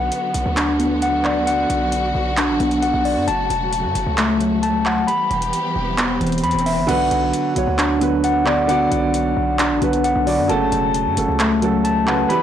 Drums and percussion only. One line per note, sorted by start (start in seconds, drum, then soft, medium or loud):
0.12 closed hi-hat medium
0.34 closed hi-hat medium
0.57 clap loud
0.57 closed hi-hat medium
0.80 closed hi-hat medium
1.02 closed hi-hat medium
1.25 clap medium
1.47 closed hi-hat medium
1.70 closed hi-hat medium
1.92 closed hi-hat medium
2.37 clap loud
2.37 closed hi-hat medium
2.60 closed hi-hat medium
2.71 closed hi-hat medium
2.82 closed hi-hat medium
3.05 open hi-hat medium
3.28 closed hi-hat medium
3.50 closed hi-hat medium
3.73 closed hi-hat medium
3.95 closed hi-hat medium
4.18 clap loud
4.18 closed hi-hat medium
4.41 closed hi-hat medium
4.63 closed hi-hat medium
4.86 clap medium
5.08 closed hi-hat medium
5.31 closed hi-hat soft
5.42 closed hi-hat medium
5.53 closed hi-hat medium
5.98 clap loud
5.98 closed hi-hat medium
6.21 closed hi-hat soft
6.27 closed hi-hat soft
6.32 closed hi-hat medium
6.38 closed hi-hat medium
6.44 closed hi-hat medium
6.51 closed hi-hat medium
6.59 closed hi-hat medium
6.66 open hi-hat medium
6.89 closed hi-hat medium
6.89 crash loud
7.11 closed hi-hat medium
7.34 closed hi-hat medium
7.56 closed hi-hat medium
7.79 clap loud
7.79 closed hi-hat medium
8.01 closed hi-hat medium
8.24 closed hi-hat medium
8.46 clap medium
8.69 closed hi-hat medium
8.92 closed hi-hat medium
9.14 closed hi-hat medium
9.59 clap loud
9.59 closed hi-hat medium
9.82 closed hi-hat medium
9.93 closed hi-hat medium
10.04 closed hi-hat medium
10.27 open hi-hat medium
10.49 closed hi-hat medium
10.72 closed hi-hat medium
10.94 closed hi-hat medium
11.17 closed hi-hat medium
11.40 clap loud
11.40 closed hi-hat medium
11.62 closed hi-hat medium
11.85 closed hi-hat medium
12.07 clap medium
12.30 closed hi-hat medium